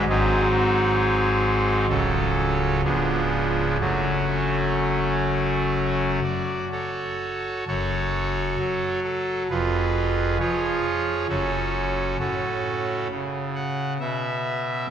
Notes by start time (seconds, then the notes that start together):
0.09 G#1 G#2 F#3 C4 D#4 G#4
0.53 F#4
0.98 G#4
1.89 C#1 C#2 F#3 C#4 A4
2.84 C#1 C#2 F3 B3 D4 G#4
3.81 F#1 F#2 F#3 A3 C#4 F#4
6.24 D5
6.72 F#4 A4 C#5
7.67 F#1 F#2 F#4 A4 C#5
8.59 F#3
9.04 A4
9.50 F1 F2 F4 G#4 B4
10.40 F3 F4 G#4 C#5
11.29 F#1 F#2 C#4 F#4 A4
12.20 A2 C#4 F#4 A4
13.11 C#3
13.55 F#5
14.00 B2 E5